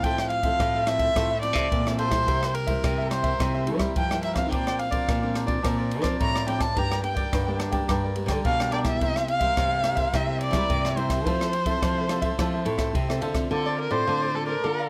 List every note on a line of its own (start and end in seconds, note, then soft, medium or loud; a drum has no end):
0.00 0.56 A2 medium
0.00 0.40 F3 medium
0.00 0.40 C4 medium
0.00 0.40 E4 medium
0.00 0.17 F4 medium
0.00 0.30 G5 loud
0.00 kick medium
0.00 ride soft
0.05 0.17 A4 medium
0.05 0.17 C5 medium
0.05 0.17 E5 medium
0.18 0.31 E5 soft
0.18 cross-stick medium
0.30 0.89 F5 loud
0.30 muted cavaquinho stroke soft
0.30 ride soft
0.43 0.82 F3 medium
0.43 0.82 C4 medium
0.43 0.72 A4 medium
0.43 0.72 C5 medium
0.43 0.71 E5 medium
0.43 kick medium
0.43 ride soft
0.59 1.13 A2 medium
0.59 kick medium
0.59 cross-stick medium
0.59 ride soft
0.74 0.87 A4 soft
0.74 0.87 C5 soft
0.74 0.87 E5 soft
0.86 1.10 F3 soft
0.86 1.10 C4 medium
0.86 1.11 E4 soft
0.86 1.00 F4 soft
0.86 1.01 A4 soft
0.86 1.00 C5 medium
0.86 1.41 E5 loud
0.86 0.98 E5 soft
0.86 cross-stick medium
0.86 ride soft
0.99 1.15 A4 medium
0.99 1.14 C5 medium
0.99 1.13 E5 medium
0.99 kick medium
0.99 ride soft
1.15 1.68 A2 medium
1.15 1.32 F3 medium
1.15 1.32 C4 soft
1.15 1.32 E4 medium
1.15 1.29 F4 medium
1.15 1.29 A4 medium
1.15 1.29 C5 medium
1.15 1.29 E5 medium
1.15 kick medium
1.15 cross-stick medium
1.15 ride medium
1.31 1.56 A4 soft
1.31 1.55 C5 soft
1.31 1.54 E5 soft
1.42 1.80 F3 soft
1.42 1.80 C4 medium
1.42 1.81 E4 medium
1.42 1.95 D5 medium
1.42 ride soft
1.53 1.67 C3 medium
1.53 1.84 C5 medium
1.53 1.83 E5 medium
1.53 kick medium
1.53 cross-stick medium
1.53 ride soft
1.58 1.84 A4 medium
1.72 2.28 A#2 medium
1.72 kick medium
1.72 ride soft
1.86 2.09 F3 medium
1.86 2.10 C4 medium
1.86 2.10 E4 medium
1.86 1.98 A4 soft
1.86 1.98 C5 soft
1.86 1.99 E5 soft
1.86 cross-stick medium
1.98 2.12 F4 medium
1.98 2.12 A4 medium
1.98 2.56 C5 medium
1.98 2.11 C5 medium
1.98 2.09 E5 medium
1.98 ride soft
2.10 2.64 G3 medium
2.10 2.64 A#3 medium
2.10 2.64 E4 medium
2.10 2.26 A4 soft
2.10 2.26 C5 soft
2.10 2.25 E5 soft
2.10 kick medium
2.10 cross-stick medium
2.10 ride soft
2.27 2.81 C3 soft
2.27 2.40 E4 medium
2.27 2.41 A#4 medium
2.27 2.41 C5 medium
2.27 2.41 E5 medium
2.27 kick medium
2.27 ride medium
2.42 2.53 A#4 soft
2.42 2.54 C5 soft
2.42 2.54 E5 soft
2.42 cross-stick medium
2.54 3.11 A#4 medium
2.54 muted cavaquinho stroke soft
2.54 ride soft
2.67 3.06 G3 medium
2.67 3.06 A#3 medium
2.67 3.07 E4 medium
2.67 2.96 A#4 medium
2.67 2.96 C5 medium
2.67 2.95 E5 medium
2.67 kick medium
2.67 ride soft
2.84 3.37 G2 medium
2.84 3.32 C3 medium
2.84 kick medium
2.84 cross-stick medium
2.84 ride soft
2.98 3.10 A#4 soft
2.98 3.11 C5 soft
2.98 3.11 E5 soft
3.10 3.35 G3 medium
3.10 3.35 A#3 soft
3.10 3.24 E4 soft
3.10 3.35 E4 medium
3.10 3.24 A#4 soft
3.10 3.23 C5 soft
3.10 3.64 C5 medium
3.10 3.22 E5 soft
3.10 cross-stick medium
3.10 ride soft
3.23 3.39 A#4 medium
3.23 3.38 C5 medium
3.23 3.38 E5 medium
3.23 kick medium
3.23 ride soft
3.39 3.93 C3 medium
3.39 3.63 G3 medium
3.39 3.64 A#3 soft
3.39 3.52 E4 medium
3.39 3.64 E4 medium
3.39 3.53 A#4 medium
3.39 3.53 C5 medium
3.39 3.53 E5 medium
3.39 kick medium
3.39 cross-stick medium
3.39 ride soft
3.54 3.80 A#4 soft
3.54 3.79 C5 soft
3.54 3.78 E5 medium
3.66 3.94 G3 soft
3.66 3.94 A#3 soft
3.66 3.94 E4 medium
3.66 ride soft
3.77 3.91 G3 medium
3.77 4.08 C5 medium
3.77 4.07 E5 medium
3.77 kick medium
3.77 cross-stick medium
3.77 ride soft
3.81 4.09 A#4 soft
3.96 4.49 G2 medium
3.96 4.52 F3 medium
3.96 4.23 G5 medium
3.96 kick medium
3.96 ride soft
4.11 4.34 G3 soft
4.11 4.35 A#3 medium
4.11 4.35 E4 medium
4.11 4.22 A#4 soft
4.11 4.23 C5 soft
4.11 4.23 E5 soft
4.11 cross-stick medium
4.22 4.36 E4 medium
4.22 4.36 A#4 medium
4.22 4.35 C5 medium
4.22 4.35 E5 medium
4.22 4.34 E5 medium
4.22 ride soft
4.35 4.88 F3 medium
4.35 4.89 C4 medium
4.35 4.89 D4 medium
4.35 4.51 A#4 soft
4.35 4.50 C5 soft
4.35 4.49 E5 soft
4.35 4.50 F5 medium
4.35 kick medium
4.35 cross-stick medium
4.35 ride soft
4.51 5.05 A#2 soft
4.51 4.65 D4 medium
4.51 4.65 A#4 medium
4.51 4.65 C5 medium
4.51 4.66 D5 medium
4.51 4.81 G5 medium
4.51 kick medium
4.51 ride soft
4.67 4.78 A#4 soft
4.67 4.79 C5 soft
4.67 4.79 D5 soft
4.67 cross-stick medium
4.79 5.36 F5 medium
4.79 muted cavaquinho stroke soft
4.79 ride soft
4.91 5.07 F3 medium
4.91 5.16 C4 soft
4.91 5.17 D4 medium
4.91 5.21 A#4 soft
4.91 5.20 C5 medium
4.91 5.19 D5 medium
4.91 kick medium
4.91 ride soft
5.08 5.56 A#2 medium
5.08 5.21 F3 soft
5.08 kick medium
5.08 cross-stick medium
5.08 ride soft
5.22 5.46 F3 medium
5.22 5.46 C4 medium
5.22 5.46 D4 medium
5.22 5.34 A#4 soft
5.22 5.35 C5 soft
5.22 5.35 D5 soft
5.34 5.48 D4 soft
5.34 5.48 A#4 soft
5.34 5.47 C5 soft
5.34 5.46 D5 soft
5.34 cross-stick medium
5.34 ride soft
5.47 5.58 F3 medium
5.47 5.59 C4 medium
5.47 5.59 D4 medium
5.47 5.62 A#4 medium
5.47 5.62 C5 medium
5.47 5.62 D5 medium
5.47 kick medium
5.47 ride soft
5.62 6.17 A#2 medium
5.62 5.90 F3 soft
5.62 5.90 C4 soft
5.62 5.76 D4 medium
5.62 5.90 D4 medium
5.62 5.77 A#4 medium
5.62 5.77 C5 medium
5.62 5.76 D5 medium
5.62 kick medium
5.62 cross-stick medium
5.62 ride medium
5.77 6.04 A#4 soft
5.77 6.03 C5 soft
5.77 6.01 D5 soft
5.91 ride soft
6.02 6.18 F3 medium
6.02 6.42 C4 medium
6.02 6.43 D4 medium
6.02 6.33 A#4 medium
6.02 6.32 C5 medium
6.02 6.31 D5 medium
6.02 kick medium
6.02 cross-stick medium
6.02 ride medium
6.20 6.77 A2 medium
6.20 6.45 F3 medium
6.20 6.47 A#5 medium
6.20 kick medium
6.20 ride medium
6.34 6.46 A#4 soft
6.34 6.47 C5 soft
6.34 6.47 D5 soft
6.34 cross-stick medium
6.46 6.64 F3 medium
6.46 6.64 C4 medium
6.46 6.60 D4 medium
6.46 6.64 D4 medium
6.46 6.60 A#4 medium
6.46 6.59 C5 medium
6.46 6.58 D5 medium
6.46 6.63 G5 medium
6.46 ride soft
6.59 6.75 A#4 soft
6.59 6.74 C5 soft
6.59 6.74 D5 soft
6.59 6.79 A5 medium
6.59 kick medium
6.59 cross-stick medium
6.59 ride soft
6.76 7.30 G2 soft
6.76 7.00 G3 medium
6.76 7.00 A#3 soft
6.76 6.89 D4 medium
6.76 7.00 D4 medium
6.76 6.90 A#4 medium
6.76 6.90 D5 medium
6.76 6.89 G5 medium
6.76 7.03 A#5 medium
6.76 kick medium
6.76 ride medium
6.91 7.03 A#4 soft
6.91 7.03 D5 soft
6.91 7.03 G5 soft
6.91 cross-stick medium
7.03 7.41 G3 soft
7.03 7.42 A#3 soft
7.03 7.42 D4 medium
7.03 7.56 G5 medium
7.03 muted cavaquinho stroke soft
7.03 ride soft
7.15 7.45 A#4 medium
7.15 7.44 D5 medium
7.15 7.44 G5 medium
7.15 kick medium
7.15 ride soft
7.32 7.81 G2 medium
7.32 7.86 D3 soft
7.32 kick medium
7.32 cross-stick medium
7.32 ride medium
7.46 7.71 G3 medium
7.46 7.71 A#3 medium
7.46 7.71 D4 medium
7.46 7.58 A#4 soft
7.46 7.59 D5 soft
7.46 7.60 G5 soft
7.59 7.73 D4 soft
7.59 7.73 A#4 soft
7.59 7.72 D5 soft
7.59 7.71 G5 soft
7.59 cross-stick medium
7.59 ride soft
7.72 8.11 G3 medium
7.72 8.12 A#3 medium
7.72 8.12 D4 medium
7.72 7.87 A#4 medium
7.72 7.87 D5 medium
7.72 7.86 G5 medium
7.72 kick medium
7.72 ride soft
7.88 8.42 G2 soft
7.88 8.01 D4 medium
7.88 8.02 A#4 medium
7.88 8.02 D5 medium
7.88 8.02 G5 medium
7.88 kick medium
7.88 cross-stick medium
7.88 ride medium
8.03 8.30 A#4 soft
8.03 8.29 D5 soft
8.03 8.27 G5 soft
8.16 8.54 G3 soft
8.16 8.54 A#3 medium
8.16 8.54 D4 medium
8.16 ride soft
8.26 8.40 D3 medium
8.26 8.57 G5 medium
8.26 kick medium
8.26 cross-stick medium
8.26 ride soft
8.30 8.58 A#4 medium
8.30 8.58 D5 medium
8.44 9.01 B2 medium
8.44 8.98 D3 medium
8.44 8.71 F5 medium
8.44 kick medium
8.44 ride soft
8.59 8.82 G3 medium
8.59 8.83 A#3 medium
8.59 8.83 D4 medium
8.59 8.71 A#4 soft
8.59 8.72 D5 soft
8.59 8.72 G5 soft
8.59 cross-stick medium
8.71 8.85 D4 medium
8.71 8.86 A#4 medium
8.71 8.79 D5 medium
8.71 8.84 D5 medium
8.71 8.83 G5 medium
8.71 ride soft
8.84 9.23 G3 medium
8.84 9.23 A#3 medium
8.84 9.23 E4 medium
8.84 9.00 A#4 soft
8.84 8.99 D5 soft
8.84 9.26 E5 medium
8.84 8.99 G5 medium
8.84 kick medium
8.84 cross-stick medium
8.84 ride soft
9.00 9.54 C3 soft
9.00 9.14 E4 medium
9.00 9.14 A#4 medium
9.00 9.15 C5 medium
9.00 9.14 E5 medium
9.00 kick medium
9.00 ride soft
9.15 9.27 A#4 soft
9.15 9.28 C5 soft
9.15 9.28 E5 soft
9.15 cross-stick medium
9.28 10.17 F5 loud
9.28 muted cavaquinho stroke soft
9.28 ride soft
9.40 9.79 G3 medium
9.40 9.80 A#3 medium
9.40 9.70 A#4 medium
9.40 9.69 C5 medium
9.40 9.68 E5 medium
9.40 kick medium
9.40 ride soft
9.57 10.11 G2 medium
9.57 10.05 C3 medium
9.57 kick medium
9.57 cross-stick medium
9.57 ride soft
9.71 9.83 A#4 soft
9.71 9.84 C5 soft
9.71 9.84 E5 soft
9.83 10.08 G3 soft
9.83 10.09 A#3 medium
9.83 9.97 E4 soft
9.83 10.09 E4 medium
9.83 9.97 A#4 soft
9.83 9.96 C5 soft
9.83 9.94 E5 medium
9.83 cross-stick medium
9.83 ride soft
9.95 10.12 A#4 medium
9.95 10.11 C5 medium
9.95 10.10 E5 medium
9.95 kick medium
9.95 ride soft
10.12 10.67 C3 medium
10.12 10.51 G3 medium
10.12 10.51 A#3 soft
10.12 10.26 E4 medium
10.12 10.52 E4 medium
10.12 10.26 A#4 medium
10.12 10.27 C5 medium
10.12 10.26 E5 medium
10.12 10.41 E5 medium
10.12 kick medium
10.12 cross-stick medium
10.12 ride medium
10.27 10.54 A#4 soft
10.27 10.53 C5 soft
10.27 10.51 E5 medium
10.41 10.99 D5 medium
10.41 ride soft
10.52 10.92 G3 medium
10.52 10.92 A#3 medium
10.52 10.92 E4 medium
10.52 10.82 A#4 medium
10.52 10.82 C5 medium
10.52 10.81 E5 medium
10.52 kick medium
10.52 cross-stick medium
10.52 ride soft
10.69 11.23 G2 medium
10.69 11.26 C3 medium
10.69 kick medium
10.69 ride soft
10.84 10.96 A#4 soft
10.84 10.97 C5 soft
10.84 10.97 E5 soft
10.84 cross-stick medium
10.96 11.21 G3 soft
10.96 11.21 A#3 medium
10.96 11.10 E4 medium
10.96 11.21 E4 medium
10.96 11.10 A#4 medium
10.96 12.95 C5 medium
10.96 11.09 C5 medium
10.96 11.08 E5 medium
10.96 ride soft
11.09 11.25 A#4 soft
11.09 11.24 C5 soft
11.09 11.23 E5 soft
11.09 kick medium
11.09 cross-stick medium
11.09 ride medium
11.25 11.79 F3 medium
11.25 11.52 C4 soft
11.25 11.53 E4 medium
11.25 11.39 F4 medium
11.25 11.39 A4 medium
11.25 11.53 A4 medium
11.25 11.40 C5 medium
11.25 11.40 E5 medium
11.25 kick medium
11.25 ride medium
11.41 11.53 A4 soft
11.41 11.53 C5 soft
11.41 11.54 E5 soft
11.41 cross-stick medium
11.53 muted cavaquinho stroke soft
11.53 ride soft
11.65 12.05 C4 medium
11.65 12.05 E4 medium
11.65 12.05 A4 medium
11.65 11.96 A4 medium
11.65 11.95 C5 medium
11.65 11.94 E5 medium
11.65 kick medium
11.65 ride medium
11.82 12.36 C3 medium
11.82 12.30 F3 medium
11.82 kick medium
11.82 cross-stick medium
11.82 ride medium
11.98 12.10 A4 soft
11.98 12.10 C5 soft
11.98 12.10 E5 soft
12.09 12.33 C4 medium
12.09 12.34 E4 soft
12.09 12.23 F4 soft
12.09 12.34 A4 medium
12.09 12.23 A4 soft
12.09 12.21 C5 soft
12.09 12.20 E5 soft
12.09 cross-stick medium
12.09 ride medium
12.22 12.37 A4 medium
12.22 12.37 C5 medium
12.22 12.36 E5 medium
12.22 kick medium
12.22 ride soft
12.38 12.92 F3 medium
12.38 12.62 C4 medium
12.38 12.62 E4 medium
12.38 12.51 F4 medium
12.38 12.52 A4 medium
12.38 12.63 A4 medium
12.38 12.52 C5 medium
12.38 12.53 E5 medium
12.38 kick medium
12.38 cross-stick medium
12.38 ride soft
12.54 12.79 A4 soft
12.54 12.78 C5 soft
12.54 12.76 E5 soft
12.65 12.91 A2 medium
12.65 12.92 C4 soft
12.65 12.93 E4 soft
12.65 12.93 A4 medium
12.65 ride soft
12.78 13.08 A4 medium
12.78 13.07 C5 medium
12.78 13.06 E5 medium
12.78 kick medium
12.78 cross-stick medium
12.78 ride soft
12.94 13.48 C3 medium
12.94 kick medium
12.94 ride soft
13.09 13.33 C4 medium
13.09 13.33 E4 medium
13.09 13.33 A4 medium
13.09 13.21 A4 soft
13.09 13.21 C5 soft
13.09 13.22 E5 soft
13.09 cross-stick medium
13.21 13.47 D3 medium
13.21 13.35 F4 medium
13.21 13.35 A4 medium
13.21 13.34 C5 medium
13.21 13.33 E5 medium
13.21 ride soft
13.34 13.87 C4 medium
13.34 13.88 F4 medium
13.34 13.88 A4 medium
13.34 13.50 A4 soft
13.34 13.49 C5 soft
13.34 13.48 E5 soft
13.34 kick medium
13.34 cross-stick medium
13.34 ride soft
13.50 14.04 D3 soft
13.50 13.64 F4 soft
13.50 13.64 A4 soft
13.50 13.78 A4 medium
13.50 13.65 C5 soft
13.50 13.65 D5 soft
13.66 13.77 A4 medium
13.66 13.77 C5 medium
13.66 13.78 D5 medium
13.78 13.93 A#4 medium
13.78 muted cavaquinho stroke soft
13.90 14.04 A2 medium
13.90 14.29 C4 medium
13.90 14.30 F4 medium
13.90 14.30 A4 medium
13.90 14.06 A4 medium
13.90 14.05 C5 medium
13.90 14.37 C5 medium
13.90 14.05 D5 medium
14.07 14.60 A2 medium
14.07 14.55 D3 medium
14.07 14.20 F4 medium
14.07 14.20 A4 medium
14.07 14.21 C5 medium
14.07 14.21 D5 medium
14.22 14.48 A4 medium
14.22 14.47 C5 medium
14.22 14.45 D5 medium
14.34 14.51 C4 soft
14.34 14.52 F4 medium
14.34 14.52 A4 soft
14.34 14.47 A4 medium
14.46 14.62 A4 medium
14.46 14.89 A#4 medium
14.46 14.62 C5 medium
14.46 14.61 D5 medium
14.63 14.89 D3 medium
14.63 14.80 A#3 medium
14.63 14.80 F4 medium
14.63 14.76 A4 medium
14.63 14.81 A4 medium
14.63 14.77 D5 medium
14.63 14.77 F5 medium
14.63 14.77 A#5 medium
14.78 14.89 D5 medium
14.78 14.89 F5 medium
14.78 14.89 A#5 medium